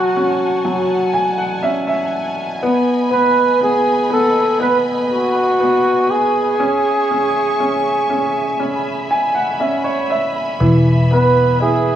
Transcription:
Already playing: F#3 C#4 F#4 F#5 G#5 A5
0.16 C#4
0.65 F#3
1.14 G#5
1.38 F#5
1.63 C#4 E5
1.87 E5
2.63 B3 D#5 B5
3.11 B3 B4
3.61 B3 G#4
4.10 B3 A4
4.60 B3 B4
5.13 F#4
5.60 B3
6.11 G#4
6.60 C#4 E5 C#6
7.11 C#4
7.60 C#4
8.10 C#4
8.59 C#4 B5
9.11 G#5
9.35 F#5
9.60 C#4 E5
9.84 C#5
10.10 E5
10.60 E1 E3
11.11 B3 B4
11.60 E4 G#4

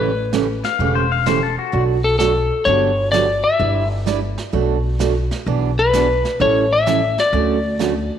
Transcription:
Already playing: A1 B4
0.33 C#3 E3 A3 C#4 G4, snare, hi-hat pedal
0.64 F5, snare
0.79 E1 C#3 E3 A3 C#4 G4, brush sweep
0.95 C5
1.12 F5
1.26 C#3 E3 A3 C#4 G4 C5, snare, hi-hat pedal
1.43 A4
1.59 F#4
1.72 B1 B2 F#3 A3 D4 F#4, brush sweep
2.04 A4
2.19 B2 F#3 A3 D4 F#4 A4, snare, hi-hat pedal
2.65 G1 D3 F#3 B3 D4 G4 C#5, brush sweep
3.12 D3 F#3 B3 D4 G4 D5, snare, hi-hat pedal
3.44 E5
3.59 G1 G3 D4 E4 B4, brush sweep
4.06 G3 D4 E4 B4, snare, hi-hat pedal
4.38 snare
4.53 B1 B2 F#3 A3 D4 F#4, brush sweep
4.99 B2 F#3 A3 D4 F#4, snare, hi-hat pedal
5.31 snare
5.46 B1 B2 E3 B3 D4 G#4, brush sweep
5.79 B4
5.93 B2 E3 B3 D4 G#4, snare, hi-hat pedal
6.25 snare
6.40 A1 E3 G3 C#4 E4 A4 C#5, brush sweep
6.73 E5
6.86 E3 G3 C#4 E4 A4, snare, hi-hat pedal
7.18 D5, snare
7.33 D2 D3 F#3 A3 C#4 F#4, brush sweep
7.79 D3 F#3 A3 C#4 F#4, snare, hi-hat pedal

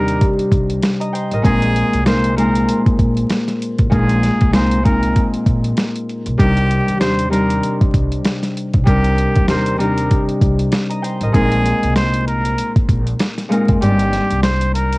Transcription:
Already playing: D#2 C3 G3 D4 D#4 G4 A#4
0.08 closed hi-hat
0.21 kick, closed hi-hat
0.39 muted upright bass stroke, closed hi-hat
0.52 C2, kick, closed hi-hat
0.70 closed hi-hat
0.82 snare, closed hi-hat
1.00 D#5 A#5, closed hi-hat
1.13 C5 G5, closed hi-hat
1.31 A1 A#4 D#5, closed hi-hat
1.42 A#1 A#2 G#3 C4 D#4 G#4 A#4, kick, closed hi-hat
1.62 closed hi-hat
1.76 closed hi-hat
1.93 C2, closed hi-hat
2.04 A#2 G#3 C4 D#4 A#4 C5, snare, closed hi-hat
2.24 closed hi-hat
2.36 A#2 G#3 C4 D#4 A#4 C5, closed hi-hat
2.55 closed hi-hat
2.69 closed hi-hat
2.86 muted upright bass stroke, kick, closed hi-hat
2.99 A#1, kick, closed hi-hat
3.17 closed hi-hat
3.30 snare, closed hi-hat
3.48 snare, closed hi-hat
3.62 closed hi-hat
3.79 A1, kick, closed hi-hat
3.90 A#1 A#2 G#3 C4 D4 G#4 A#4, kick, closed hi-hat
3.98 D#4
4.09 closed hi-hat
4.23 snare, closed hi-hat
4.41 C2, kick, closed hi-hat
4.52 A#2 G#3 C4 D#4 A#4 C5, snare, closed hi-hat
4.71 closed hi-hat
4.83 A#2 G#3 C4 D#4 A#4, kick, closed hi-hat
5.03 closed hi-hat
5.16 kick, closed hi-hat
5.34 muted upright bass stroke, closed hi-hat
5.46 A#1, kick, closed hi-hat
5.64 closed hi-hat
5.77 snare, closed hi-hat
5.96 closed hi-hat
6.09 closed hi-hat
6.26 B1, closed hi-hat
6.38 C2 C3 G3 D4 D#4 G4 A#4, kick, closed hi-hat
6.57 closed hi-hat
6.71 closed hi-hat
6.88 D#2, closed hi-hat
7.00 C3 G3 D4 D#4 C5, snare, closed hi-hat
7.19 closed hi-hat
7.30 C3 G3 D4 D#4 A#4 C5, closed hi-hat
7.50 closed hi-hat
7.63 closed hi-hat
7.81 kick, closed hi-hat
7.94 C2, kick, closed hi-hat
8.12 closed hi-hat
8.24 snare, closed hi-hat
8.43 snare, closed hi-hat
8.57 closed hi-hat
8.73 B1, kick, closed hi-hat
8.85 C2 C3 G3 D4 D#4 G4 A#4, kick, closed hi-hat
9.04 closed hi-hat
9.18 closed hi-hat
9.35 D#2, kick, closed hi-hat
9.47 C3 G3 D4 D#4 A#4 C5, snare, closed hi-hat
9.66 closed hi-hat
9.77 C3 G3 D4 D#4 G4 A#4, closed hi-hat
9.97 closed hi-hat
10.11 kick, closed hi-hat
10.28 muted upright bass stroke, closed hi-hat
10.41 C2, kick, closed hi-hat
10.59 closed hi-hat
10.72 snare, closed hi-hat
10.90 D#5 A#5, closed hi-hat
11.02 C5 G5, closed hi-hat
11.21 A1 A#4 D#5, closed hi-hat
11.32 A#1 A#2 G#3 C4 D#4 G#4 A#4, kick, closed hi-hat
11.52 closed hi-hat
11.66 closed hi-hat
11.83 C2, closed hi-hat
11.96 C5, snare, closed hi-hat
12.14 closed hi-hat
12.27 A#4, closed hi-hat
12.45 closed hi-hat
12.58 closed hi-hat
12.76 kick, closed hi-hat
12.89 A#1, kick, closed hi-hat
13.07 closed hi-hat
13.20 snare, closed hi-hat
13.38 snare, closed hi-hat
13.49 A#2 G#3 C4 D#4 A#4, closed hi-hat
13.68 F#1, kick, closed hi-hat
13.81 G1 G2 G3 C4 D4 G4 D5, closed hi-hat
13.99 closed hi-hat
14.13 snare, closed hi-hat
14.31 C2, closed hi-hat
14.43 C5, snare, closed hi-hat
14.61 closed hi-hat
14.74 A#4, closed hi-hat
14.93 closed hi-hat

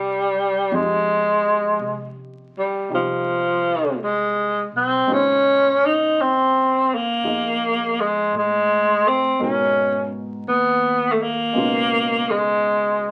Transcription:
Already playing: C2 F3 G3 C4 D#4 F4 G4
0.71 F2 F3 G#3 C4 D#4 F4 G4
1.79 C3
2.58 G3
2.89 C2 D#4 F4 G4
2.94 F3
4.03 G#3
4.72 B1
4.77 C4
5.07 A#1 C#3 G#3 D#4 F4
5.12 C#4 C5
5.85 D#4
6.21 C4
6.94 A#3
7.23 F2 D#4 F4 G#4 D#5
8.00 G#3
8.32 A2
8.37 G#3
9.08 C4
9.39 G#2 B2 G#3 C#4 D#4 F#4 A#4
10.47 D#2 B3
11.12 A3
11.22 A#3
11.53 C#2 B2 G#3 C#4
11.57 D#4 F4
12.30 G#3

